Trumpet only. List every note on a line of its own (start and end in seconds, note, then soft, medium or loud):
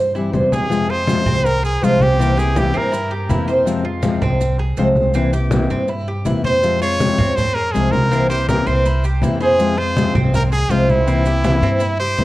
0.53 0.91 G#4 medium
0.90 1.48 C5 loud
1.46 1.64 A#4 loud
1.65 1.85 G#4 medium
1.84 2.03 F4 medium
2.02 2.40 G4 medium
2.38 2.60 G#4 medium
2.58 2.79 G4 medium
2.77 3.13 A#4 medium
6.45 6.79 C5 loud
6.82 7.37 C#5 loud
7.36 7.56 C5 loud
7.54 7.74 A#4 medium
7.72 7.93 G#4 medium
7.92 8.29 A#4 loud
8.29 8.47 C5 medium
8.48 8.68 A#4 medium
8.66 9.04 C5 medium
9.42 9.80 G#4 loud
9.78 10.15 C5 loud
10.35 10.43 A#4 loud
10.52 10.72 G#4 loud
10.70 10.92 F4 medium
10.90 11.99 E4 medium
12.00 12.24 C5 loud